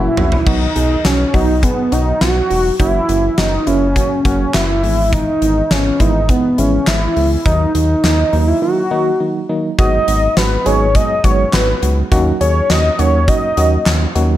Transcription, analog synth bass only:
0.17 0.38 A#1 loud
0.47 0.67 B1 loud
0.76 0.96 B1 loud
1.05 1.25 B1 loud
1.34 1.65 B1 medium
1.92 2.13 B1 loud
2.21 2.42 B1 loud
2.50 2.71 E1 medium
2.80 3.00 F#1 loud
3.09 3.29 F#1 loud
3.38 3.58 F#1 loud
3.67 3.97 F#1 medium
4.25 4.45 F#1 loud
4.54 4.85 F#1 loud
4.83 5.24 G#1 loud
5.42 5.62 G#1 loud
5.71 5.91 G#1 loud
6.00 6.31 G#1 loud
6.58 6.79 G#1 loud
6.87 7.08 G#1 loud
7.16 7.37 C#2 medium
7.46 7.66 D#2 loud
7.75 7.95 D#2 loud
8.04 8.24 D#2 loud
8.33 8.53 D#2 loud
9.79 9.99 G#1 loud
10.08 10.28 G#1 loud
10.37 10.57 G#1 loud
10.66 10.97 G#1 loud
11.24 11.45 G#1 loud
11.53 11.74 G#1 loud
11.82 12.03 C#2 loud
12.12 12.32 D#2 loud
12.41 12.61 D#2 medium
12.70 12.90 D#2 loud
12.99 13.30 D#2 loud
13.57 13.78 D#2 loud
13.86 14.07 D#2 loud
14.15 14.36 D#2 loud

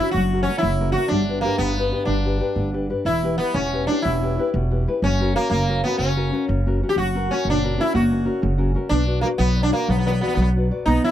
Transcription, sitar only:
0.00 0.11 E4 medium
0.11 0.42 F#4 medium
0.43 0.58 C#4 medium
0.58 0.91 E4 medium
0.92 1.08 F#4 medium
1.08 1.41 D4 medium
1.41 1.58 A#3 medium
1.58 2.04 B3 medium
2.05 2.69 D4 medium
3.06 3.37 E4 medium
3.38 3.54 B3 medium
3.54 3.86 C#4 medium
3.87 4.03 D4 medium
4.02 4.49 E4 medium
5.04 5.35 C#4 medium
5.36 5.48 A#3 medium
5.49 5.80 A#3 medium
5.84 5.98 B3 medium
5.98 6.44 C#4 medium
6.89 6.96 G4 medium
6.98 7.32 F#4 medium
7.31 7.47 C#4 medium
7.50 7.82 D4 medium
7.81 7.94 E4 medium
7.95 8.40 F#4 medium
8.89 9.21 D4 medium
9.21 9.26 A#3 medium
9.38 9.62 B3 medium
9.63 9.72 D4 medium
9.73 9.87 A#3 medium
9.90 9.96 B3 medium
9.99 10.05 B3 soft
10.07 10.11 B3 medium
10.12 10.18 B3 soft
10.21 10.26 B3 medium
10.27 10.34 B3 medium
10.35 10.40 B3 medium
10.42 10.49 B3 soft
10.86 11.02 D#4 medium
11.04 11.11 E4 medium

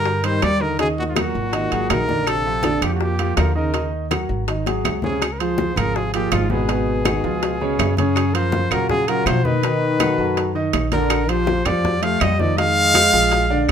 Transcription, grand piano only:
0.00 0.17 G3 medium
0.00 0.17 G4 medium
0.00 0.18 A#4 medium
0.23 0.54 G3 medium
0.23 0.54 G4 medium
0.23 0.54 A#4 medium
0.60 0.76 D#3 medium
0.60 0.76 D#4 medium
0.60 0.76 D#5 medium
0.78 1.09 D#3 medium
0.78 1.09 D#4 medium
0.78 1.09 D#5 medium
1.16 1.46 F#3 medium
1.16 1.47 F#4 medium
1.16 1.47 A#4 medium
1.53 1.68 D#3 medium
1.53 1.68 D#4 medium
1.53 1.69 D#5 medium
1.71 2.02 F#3 medium
1.71 2.02 F#4 medium
1.71 2.02 G#4 medium
2.08 2.38 D3 medium
2.08 2.38 D4 medium
2.08 2.39 D5 medium
2.46 2.61 F3 medium
2.46 2.61 F4 medium
2.46 2.61 G4 medium
2.64 2.79 D3 medium
2.64 2.79 D4 medium
2.64 2.79 D5 medium
2.83 3.13 F3 medium
2.83 3.13 F4 medium
2.83 3.13 G4 medium
3.19 3.49 F3 medium
3.19 3.49 F4 medium
3.19 3.49 G4 medium
3.55 3.71 D#3 medium
3.55 3.71 D#4 medium
3.55 3.71 D#5 medium
3.74 4.04 D#3 medium
3.74 4.04 D#4 medium
3.74 4.05 D#5 medium
4.11 4.41 F#3 medium
4.11 4.41 F#4 medium
4.11 4.42 A#4 medium
4.48 4.63 D#3 medium
4.48 4.63 D#4 medium
4.48 4.64 D#5 medium
4.67 4.97 F#3 medium
4.67 4.97 F#4 medium
4.67 4.97 G#4 medium
5.04 5.19 C#3 medium
5.04 5.19 C#4 medium
5.04 5.19 C#5 medium
5.40 5.70 F3 medium
5.40 5.71 F4 medium
5.40 5.71 G#4 medium
5.77 6.07 F3 medium
5.77 6.08 F4 medium
5.77 6.07 G#4 medium
6.15 6.44 F3 medium
6.15 6.44 F4 medium
6.15 6.45 G#4 medium
6.50 6.65 B2 medium
6.50 6.66 B3 medium
6.50 6.66 B4 medium
6.69 6.99 B2 medium
6.69 6.99 B3 medium
6.69 6.99 B4 medium
7.05 7.20 D#3 medium
7.05 7.21 D#4 medium
7.05 7.21 F#4 medium
7.24 7.54 F3 medium
7.24 7.54 F4 medium
7.24 7.54 G#4 medium
7.61 7.91 C#3 loud
7.61 7.91 C#4 loud
7.61 7.92 C#5 medium
7.99 8.29 C#3 medium
7.99 8.29 C#4 medium
7.99 8.29 C#5 medium
8.35 8.65 C#3 medium
8.35 8.65 F4 medium
8.35 8.65 A#4 medium
8.71 9.02 F#3 medium
8.71 9.01 F4 medium
8.71 9.02 F#4 medium
9.08 9.38 F#3 medium
9.08 9.39 F4 medium
9.08 9.39 F#4 medium
9.45 9.60 D#3 medium
9.45 9.60 D#4 medium
9.45 9.61 D#5 medium
9.63 9.94 D#3 medium
9.63 9.94 D#4 medium
9.63 9.94 D#5 medium
10.01 10.16 F#3 medium
10.01 10.16 F#4 medium
10.01 10.16 A4 medium
10.18 10.48 F#3 medium
10.18 10.49 F#4 medium
10.18 10.49 A4 medium
10.55 10.85 D#3 medium
10.55 10.86 D#4 medium
10.55 10.86 D#5 loud
10.92 11.22 D3 medium
10.92 11.22 D4 medium
10.92 11.23 D5 medium
11.29 11.59 F3 medium
11.29 11.59 F4 medium
11.29 11.60 G4 medium
11.66 11.96 F3 medium
11.66 11.96 F4 medium
11.66 11.97 G4 medium
12.02 12.33 F3 medium
12.02 12.33 F4 medium
12.02 12.33 G4 medium
12.39 12.55 D#3 medium
12.39 12.54 D#4 medium
12.39 12.55 D#5 medium
12.57 12.88 D#3 medium
12.57 12.88 D#4 medium
12.57 12.88 D#5 medium
12.94 13.10 G#3 medium
12.94 13.10 G#4 medium
12.94 13.10 C5 medium
13.13 13.43 F3 medium
13.13 13.43 F4 medium
13.13 13.44 G#4 medium
13.50 13.72 D3 medium
13.50 13.72 D4 loud
13.50 13.72 D5 loud

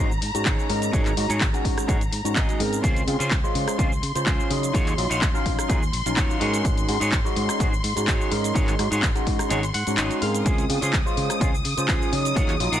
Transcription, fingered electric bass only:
0.00 0.17 G#1 loud
0.22 0.32 G#2 medium
0.35 0.43 G#2 medium
0.46 0.56 G#1 medium
0.70 0.89 G#2 loud
0.93 1.12 G#1 loud
1.17 1.27 G#2 loud
1.30 1.39 G#2 loud
1.41 1.51 G#1 loud
1.65 1.75 G#2 loud
1.88 2.08 G#1 loud
2.12 2.22 G#2 medium
2.25 2.34 G#2 medium
2.36 2.46 G#1 medium
2.60 2.79 G#2 medium
2.84 3.03 C#2 loud
3.07 3.17 C#3 loud
3.20 3.29 C#3 medium
3.31 3.41 C#2 medium
3.55 3.65 C#3 medium
3.79 3.98 C#2 loud
4.03 4.13 C#3 medium
4.15 4.24 C#3 medium
4.27 4.37 C#2 loud
4.50 4.70 C#3 loud
4.74 4.93 D#2 loud
4.98 5.08 A#1 loud
5.10 5.19 A#1 medium
5.46 5.56 A#1 loud
5.69 5.89 D#2 loud
5.93 6.03 A#1 medium
6.06 6.15 A#1 medium
6.17 6.27 D#2 medium
6.41 6.60 G#2 medium
6.65 6.84 G#1 loud
6.89 6.99 G#2 loud
7.01 7.10 G#2 medium
7.12 7.22 G#1 loud
7.36 7.46 G#2 loud
7.60 7.79 G#1 loud
7.84 7.94 G#2 medium
7.96 8.05 G#2 medium
8.08 8.18 G#1 medium
8.32 8.51 G#2 loud
8.55 8.74 G#1 loud
8.79 8.89 G#2 loud
8.92 9.01 G#2 loud
9.03 9.13 G#1 medium
9.27 9.37 G#2 loud
9.51 9.70 G#1 loud
9.74 9.84 G#2 medium
9.87 9.96 G#2 medium
9.98 10.08 G#1 medium
10.22 10.41 G#2 loud
10.46 10.65 C#2 medium
10.70 10.80 C#3 loud
10.82 10.91 C#3 medium
10.93 11.03 C#2 medium
11.17 11.27 C#3 loud
11.41 11.60 C#2 loud
11.65 11.75 C#3 medium
11.77 11.86 C#3 medium
11.89 11.99 C#2 loud
12.12 12.32 C#3 loud
12.36 12.55 D#2 loud
12.60 12.70 A#1 loud
12.72 12.80 A#1 medium

